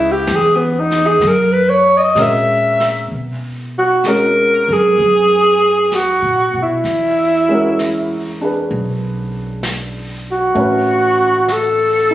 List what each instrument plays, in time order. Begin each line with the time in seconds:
Already playing: upright bass C#2, grand piano G#3 C#4 F#4 B4, alto saxophone E4
0.12 alto saxophone G4
0.27 upright bass E2, snare, hi-hat pedal
0.35 alto saxophone G#4
0.57 alto saxophone B3
0.79 alto saxophone D#4
0.91 snare
1.06 alto saxophone G#4
1.21 upright bass F#2, brush sweep, snare
1.27 alto saxophone A#4
1.52 alto saxophone B4
1.69 alto saxophone C#5
1.97 alto saxophone D#5
2.15 upright bass A#2, grand piano G#3 C#4 F#4 A#4, snare, hi-hat pedal
2.22 alto saxophone E5
2.80 snare
3.10 upright bass B2, brush sweep
3.78 alto saxophone F#4
4.04 grand piano G#3 C#4 F#4, alto saxophone A#4, brush sweep, snare, hi-hat pedal
4.08 grand piano A#4
4.68 upright bass F#2
4.72 alto saxophone G#4
4.98 upright bass F#2, brush sweep
5.92 alto saxophone F#4, brush sweep, snare, hi-hat pedal
6.22 upright bass A#2
6.54 upright bass B2
6.62 alto saxophone E4
6.84 upright bass E2, brush sweep, snare
7.49 grand piano G#3 C#4 F#4
7.54 grand piano A#4
7.79 brush sweep, snare, hi-hat pedal
8.41 grand piano D4 G#4 B4
8.71 upright bass B1, brush sweep
9.63 brush sweep, snare, hi-hat pedal
10.31 alto saxophone F#4
10.55 upright bass A1, grand piano A3 C#4 F#4, brush sweep
10.60 grand piano B4
11.48 alto saxophone A4, brush sweep, snare, hi-hat pedal
12.11 grand piano D#4